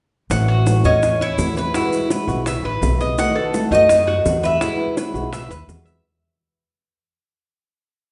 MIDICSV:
0, 0, Header, 1, 7, 480
1, 0, Start_track
1, 0, Tempo, 358209
1, 410, Time_signature, 4, 2, 24, 8
1, 10873, End_track
2, 0, Start_track
2, 0, Title_t, "Cuban tres"
2, 0, Program_c, 0, 25
2, 418, Note_on_c, 0, 78, 97
2, 1135, Note_off_c, 0, 78, 0
2, 1141, Note_on_c, 0, 75, 81
2, 1633, Note_off_c, 0, 75, 0
2, 1637, Note_on_c, 0, 73, 78
2, 2119, Note_off_c, 0, 73, 0
2, 2125, Note_on_c, 0, 71, 74
2, 3020, Note_off_c, 0, 71, 0
2, 4278, Note_on_c, 0, 78, 95
2, 5013, Note_off_c, 0, 78, 0
2, 5020, Note_on_c, 0, 75, 86
2, 5961, Note_off_c, 0, 75, 0
2, 5966, Note_on_c, 0, 76, 84
2, 7817, Note_off_c, 0, 76, 0
2, 10873, End_track
3, 0, Start_track
3, 0, Title_t, "Cuban tres"
3, 0, Program_c, 1, 25
3, 647, Note_on_c, 1, 66, 67
3, 1116, Note_off_c, 1, 66, 0
3, 1140, Note_on_c, 1, 61, 72
3, 1603, Note_off_c, 1, 61, 0
3, 1625, Note_on_c, 1, 64, 72
3, 2087, Note_off_c, 1, 64, 0
3, 2108, Note_on_c, 1, 71, 69
3, 2336, Note_off_c, 1, 71, 0
3, 2344, Note_on_c, 1, 64, 79
3, 2808, Note_off_c, 1, 64, 0
3, 2831, Note_on_c, 1, 71, 58
3, 3292, Note_off_c, 1, 71, 0
3, 3313, Note_on_c, 1, 76, 70
3, 3540, Note_off_c, 1, 76, 0
3, 3551, Note_on_c, 1, 71, 65
3, 4013, Note_off_c, 1, 71, 0
3, 4027, Note_on_c, 1, 75, 69
3, 4491, Note_off_c, 1, 75, 0
3, 4495, Note_on_c, 1, 69, 73
3, 4965, Note_off_c, 1, 69, 0
3, 4980, Note_on_c, 1, 63, 82
3, 5447, Note_off_c, 1, 63, 0
3, 5458, Note_on_c, 1, 66, 71
3, 5926, Note_off_c, 1, 66, 0
3, 5941, Note_on_c, 1, 71, 72
3, 6175, Note_off_c, 1, 71, 0
3, 6181, Note_on_c, 1, 64, 75
3, 6647, Note_off_c, 1, 64, 0
3, 6668, Note_on_c, 1, 71, 64
3, 7130, Note_off_c, 1, 71, 0
3, 7145, Note_on_c, 1, 76, 74
3, 7376, Note_off_c, 1, 76, 0
3, 7377, Note_on_c, 1, 71, 69
3, 7843, Note_off_c, 1, 71, 0
3, 7846, Note_on_c, 1, 76, 71
3, 8084, Note_off_c, 1, 76, 0
3, 10873, End_track
4, 0, Start_track
4, 0, Title_t, "Nylon-string guitar"
4, 0, Program_c, 2, 24
4, 402, Note_on_c, 2, 52, 62
4, 412, Note_on_c, 2, 57, 63
4, 423, Note_on_c, 2, 61, 69
4, 428, Note_on_c, 2, 66, 75
4, 874, Note_off_c, 2, 52, 0
4, 883, Note_off_c, 2, 57, 0
4, 889, Note_off_c, 2, 61, 0
4, 891, Note_off_c, 2, 66, 0
4, 891, Note_on_c, 2, 52, 40
4, 904, Note_on_c, 2, 57, 47
4, 916, Note_on_c, 2, 61, 51
4, 923, Note_on_c, 2, 66, 48
4, 1117, Note_off_c, 2, 66, 0
4, 1122, Note_off_c, 2, 52, 0
4, 1129, Note_off_c, 2, 57, 0
4, 1132, Note_off_c, 2, 61, 0
4, 1134, Note_on_c, 2, 66, 66
4, 1148, Note_on_c, 2, 61, 53
4, 1164, Note_on_c, 2, 57, 46
4, 1362, Note_off_c, 2, 57, 0
4, 1364, Note_off_c, 2, 66, 0
4, 1367, Note_off_c, 2, 61, 0
4, 1853, Note_on_c, 2, 52, 50
4, 1864, Note_on_c, 2, 57, 54
4, 1877, Note_on_c, 2, 61, 49
4, 1881, Note_on_c, 2, 66, 51
4, 2326, Note_off_c, 2, 52, 0
4, 2332, Note_off_c, 2, 57, 0
4, 2334, Note_on_c, 2, 47, 58
4, 2338, Note_off_c, 2, 61, 0
4, 2340, Note_off_c, 2, 66, 0
4, 2340, Note_on_c, 2, 52, 63
4, 2346, Note_on_c, 2, 56, 60
4, 2353, Note_on_c, 2, 59, 67
4, 2360, Note_on_c, 2, 66, 74
4, 2786, Note_off_c, 2, 52, 0
4, 2801, Note_off_c, 2, 56, 0
4, 2802, Note_on_c, 2, 52, 50
4, 2807, Note_off_c, 2, 47, 0
4, 2811, Note_off_c, 2, 59, 0
4, 2817, Note_on_c, 2, 56, 45
4, 2820, Note_off_c, 2, 66, 0
4, 2827, Note_on_c, 2, 59, 50
4, 2835, Note_on_c, 2, 66, 54
4, 3038, Note_off_c, 2, 66, 0
4, 3041, Note_off_c, 2, 52, 0
4, 3046, Note_off_c, 2, 59, 0
4, 3049, Note_off_c, 2, 56, 0
4, 3054, Note_on_c, 2, 66, 58
4, 3062, Note_on_c, 2, 59, 59
4, 3075, Note_on_c, 2, 56, 47
4, 3080, Note_on_c, 2, 52, 48
4, 3288, Note_off_c, 2, 66, 0
4, 3291, Note_off_c, 2, 52, 0
4, 3292, Note_off_c, 2, 59, 0
4, 3298, Note_off_c, 2, 56, 0
4, 3780, Note_on_c, 2, 52, 47
4, 3794, Note_on_c, 2, 56, 44
4, 3806, Note_on_c, 2, 59, 46
4, 3809, Note_on_c, 2, 66, 47
4, 4252, Note_off_c, 2, 52, 0
4, 4254, Note_on_c, 2, 47, 59
4, 4259, Note_off_c, 2, 56, 0
4, 4260, Note_on_c, 2, 51, 66
4, 4265, Note_off_c, 2, 59, 0
4, 4267, Note_off_c, 2, 66, 0
4, 4270, Note_on_c, 2, 57, 66
4, 4280, Note_on_c, 2, 59, 67
4, 4283, Note_on_c, 2, 66, 70
4, 4721, Note_off_c, 2, 51, 0
4, 4729, Note_off_c, 2, 47, 0
4, 4733, Note_off_c, 2, 57, 0
4, 4737, Note_on_c, 2, 51, 44
4, 4742, Note_off_c, 2, 59, 0
4, 4744, Note_off_c, 2, 66, 0
4, 4749, Note_on_c, 2, 57, 44
4, 4762, Note_on_c, 2, 59, 50
4, 4767, Note_on_c, 2, 66, 50
4, 4971, Note_off_c, 2, 51, 0
4, 4971, Note_off_c, 2, 66, 0
4, 4977, Note_off_c, 2, 57, 0
4, 4983, Note_off_c, 2, 59, 0
4, 4987, Note_on_c, 2, 66, 68
4, 4997, Note_on_c, 2, 59, 58
4, 5008, Note_on_c, 2, 57, 54
4, 5017, Note_on_c, 2, 51, 51
4, 5215, Note_off_c, 2, 51, 0
4, 5216, Note_off_c, 2, 57, 0
4, 5216, Note_off_c, 2, 66, 0
4, 5221, Note_off_c, 2, 59, 0
4, 5700, Note_on_c, 2, 51, 47
4, 5712, Note_on_c, 2, 57, 42
4, 5725, Note_on_c, 2, 59, 50
4, 5735, Note_on_c, 2, 66, 55
4, 6172, Note_off_c, 2, 51, 0
4, 6178, Note_off_c, 2, 57, 0
4, 6180, Note_on_c, 2, 47, 66
4, 6184, Note_off_c, 2, 59, 0
4, 6188, Note_on_c, 2, 52, 69
4, 6190, Note_off_c, 2, 66, 0
4, 6198, Note_on_c, 2, 56, 66
4, 6203, Note_on_c, 2, 59, 72
4, 6206, Note_on_c, 2, 66, 65
4, 6643, Note_off_c, 2, 52, 0
4, 6652, Note_off_c, 2, 47, 0
4, 6654, Note_off_c, 2, 56, 0
4, 6659, Note_on_c, 2, 52, 47
4, 6663, Note_off_c, 2, 59, 0
4, 6665, Note_off_c, 2, 66, 0
4, 6670, Note_on_c, 2, 56, 43
4, 6677, Note_on_c, 2, 59, 47
4, 6690, Note_on_c, 2, 66, 43
4, 6871, Note_off_c, 2, 66, 0
4, 6887, Note_on_c, 2, 66, 60
4, 6888, Note_off_c, 2, 59, 0
4, 6891, Note_off_c, 2, 52, 0
4, 6896, Note_off_c, 2, 56, 0
4, 6904, Note_on_c, 2, 59, 55
4, 6918, Note_on_c, 2, 56, 61
4, 6921, Note_on_c, 2, 52, 53
4, 7125, Note_off_c, 2, 56, 0
4, 7125, Note_off_c, 2, 66, 0
4, 7129, Note_off_c, 2, 52, 0
4, 7133, Note_off_c, 2, 59, 0
4, 7600, Note_on_c, 2, 52, 51
4, 7615, Note_on_c, 2, 56, 49
4, 7621, Note_on_c, 2, 59, 42
4, 7634, Note_on_c, 2, 66, 50
4, 8079, Note_off_c, 2, 52, 0
4, 8087, Note_off_c, 2, 56, 0
4, 8090, Note_off_c, 2, 59, 0
4, 8096, Note_off_c, 2, 66, 0
4, 10873, End_track
5, 0, Start_track
5, 0, Title_t, "Upright bass"
5, 0, Program_c, 3, 32
5, 401, Note_on_c, 3, 33, 89
5, 1077, Note_off_c, 3, 33, 0
5, 1125, Note_on_c, 3, 40, 81
5, 1801, Note_off_c, 3, 40, 0
5, 1848, Note_on_c, 3, 40, 77
5, 2277, Note_off_c, 3, 40, 0
5, 3050, Note_on_c, 3, 35, 87
5, 3502, Note_off_c, 3, 35, 0
5, 3530, Note_on_c, 3, 33, 65
5, 3759, Note_off_c, 3, 33, 0
5, 3773, Note_on_c, 3, 35, 86
5, 4202, Note_off_c, 3, 35, 0
5, 4971, Note_on_c, 3, 42, 91
5, 5646, Note_off_c, 3, 42, 0
5, 5699, Note_on_c, 3, 40, 87
5, 6125, Note_off_c, 3, 40, 0
5, 6887, Note_on_c, 3, 35, 83
5, 7339, Note_off_c, 3, 35, 0
5, 7362, Note_on_c, 3, 39, 66
5, 7593, Note_off_c, 3, 39, 0
5, 7607, Note_on_c, 3, 40, 84
5, 8036, Note_off_c, 3, 40, 0
5, 10873, End_track
6, 0, Start_track
6, 0, Title_t, "Muted nylon-string guitar strokes"
6, 1370, Note_on_c, 9, 29, 51
6, 1504, Note_off_c, 9, 29, 0
6, 3301, Note_on_c, 9, 29, 57
6, 3435, Note_off_c, 9, 29, 0
6, 5226, Note_on_c, 9, 29, 54
6, 5360, Note_off_c, 9, 29, 0
6, 7137, Note_on_c, 9, 29, 55
6, 7271, Note_off_c, 9, 29, 0
6, 10873, End_track
7, 0, Start_track
7, 0, Title_t, "Drums"
7, 409, Note_on_c, 9, 70, 71
7, 415, Note_on_c, 9, 60, 66
7, 543, Note_off_c, 9, 70, 0
7, 549, Note_off_c, 9, 60, 0
7, 892, Note_on_c, 9, 60, 57
7, 892, Note_on_c, 9, 70, 64
7, 1026, Note_off_c, 9, 60, 0
7, 1026, Note_off_c, 9, 70, 0
7, 1127, Note_on_c, 9, 70, 29
7, 1135, Note_on_c, 9, 60, 30
7, 1261, Note_off_c, 9, 70, 0
7, 1269, Note_off_c, 9, 60, 0
7, 1376, Note_on_c, 9, 70, 69
7, 1380, Note_on_c, 9, 60, 58
7, 1510, Note_off_c, 9, 70, 0
7, 1514, Note_off_c, 9, 60, 0
7, 1623, Note_on_c, 9, 60, 32
7, 1757, Note_off_c, 9, 60, 0
7, 1854, Note_on_c, 9, 70, 68
7, 1857, Note_on_c, 9, 60, 31
7, 1857, Note_on_c, 9, 61, 74
7, 1988, Note_off_c, 9, 70, 0
7, 1991, Note_off_c, 9, 60, 0
7, 1991, Note_off_c, 9, 61, 0
7, 2100, Note_on_c, 9, 60, 33
7, 2100, Note_on_c, 9, 70, 29
7, 2234, Note_off_c, 9, 60, 0
7, 2234, Note_off_c, 9, 70, 0
7, 2337, Note_on_c, 9, 60, 66
7, 2340, Note_on_c, 9, 70, 67
7, 2471, Note_off_c, 9, 60, 0
7, 2474, Note_off_c, 9, 70, 0
7, 2582, Note_on_c, 9, 70, 61
7, 2716, Note_off_c, 9, 70, 0
7, 2820, Note_on_c, 9, 60, 55
7, 2823, Note_on_c, 9, 70, 61
7, 2954, Note_off_c, 9, 60, 0
7, 2957, Note_off_c, 9, 70, 0
7, 3059, Note_on_c, 9, 60, 31
7, 3068, Note_on_c, 9, 70, 27
7, 3193, Note_off_c, 9, 60, 0
7, 3202, Note_off_c, 9, 70, 0
7, 3297, Note_on_c, 9, 60, 63
7, 3305, Note_on_c, 9, 70, 75
7, 3431, Note_off_c, 9, 60, 0
7, 3439, Note_off_c, 9, 70, 0
7, 3546, Note_on_c, 9, 60, 35
7, 3680, Note_off_c, 9, 60, 0
7, 3787, Note_on_c, 9, 70, 61
7, 3790, Note_on_c, 9, 60, 32
7, 3790, Note_on_c, 9, 61, 74
7, 3921, Note_off_c, 9, 70, 0
7, 3924, Note_off_c, 9, 60, 0
7, 3924, Note_off_c, 9, 61, 0
7, 4027, Note_on_c, 9, 70, 28
7, 4029, Note_on_c, 9, 60, 34
7, 4161, Note_off_c, 9, 70, 0
7, 4163, Note_off_c, 9, 60, 0
7, 4263, Note_on_c, 9, 70, 69
7, 4269, Note_on_c, 9, 60, 64
7, 4397, Note_off_c, 9, 70, 0
7, 4403, Note_off_c, 9, 60, 0
7, 4744, Note_on_c, 9, 70, 67
7, 4745, Note_on_c, 9, 60, 60
7, 4878, Note_off_c, 9, 70, 0
7, 4879, Note_off_c, 9, 60, 0
7, 4977, Note_on_c, 9, 60, 31
7, 4989, Note_on_c, 9, 70, 29
7, 5111, Note_off_c, 9, 60, 0
7, 5123, Note_off_c, 9, 70, 0
7, 5218, Note_on_c, 9, 60, 62
7, 5224, Note_on_c, 9, 70, 70
7, 5352, Note_off_c, 9, 60, 0
7, 5358, Note_off_c, 9, 70, 0
7, 5462, Note_on_c, 9, 60, 34
7, 5596, Note_off_c, 9, 60, 0
7, 5704, Note_on_c, 9, 60, 33
7, 5704, Note_on_c, 9, 61, 77
7, 5704, Note_on_c, 9, 70, 65
7, 5838, Note_off_c, 9, 60, 0
7, 5838, Note_off_c, 9, 61, 0
7, 5838, Note_off_c, 9, 70, 0
7, 5942, Note_on_c, 9, 70, 29
7, 5947, Note_on_c, 9, 60, 36
7, 6076, Note_off_c, 9, 70, 0
7, 6081, Note_off_c, 9, 60, 0
7, 6180, Note_on_c, 9, 60, 66
7, 6186, Note_on_c, 9, 70, 65
7, 6314, Note_off_c, 9, 60, 0
7, 6320, Note_off_c, 9, 70, 0
7, 6663, Note_on_c, 9, 60, 57
7, 6663, Note_on_c, 9, 70, 69
7, 6797, Note_off_c, 9, 60, 0
7, 6797, Note_off_c, 9, 70, 0
7, 6902, Note_on_c, 9, 60, 31
7, 6904, Note_on_c, 9, 70, 27
7, 7036, Note_off_c, 9, 60, 0
7, 7038, Note_off_c, 9, 70, 0
7, 7137, Note_on_c, 9, 60, 69
7, 7147, Note_on_c, 9, 70, 66
7, 7271, Note_off_c, 9, 60, 0
7, 7281, Note_off_c, 9, 70, 0
7, 7381, Note_on_c, 9, 60, 33
7, 7388, Note_on_c, 9, 70, 65
7, 7515, Note_off_c, 9, 60, 0
7, 7522, Note_off_c, 9, 70, 0
7, 7623, Note_on_c, 9, 60, 30
7, 7623, Note_on_c, 9, 61, 75
7, 7625, Note_on_c, 9, 70, 66
7, 7757, Note_off_c, 9, 60, 0
7, 7757, Note_off_c, 9, 61, 0
7, 7759, Note_off_c, 9, 70, 0
7, 7855, Note_on_c, 9, 60, 34
7, 7861, Note_on_c, 9, 70, 29
7, 7989, Note_off_c, 9, 60, 0
7, 7995, Note_off_c, 9, 70, 0
7, 10873, End_track
0, 0, End_of_file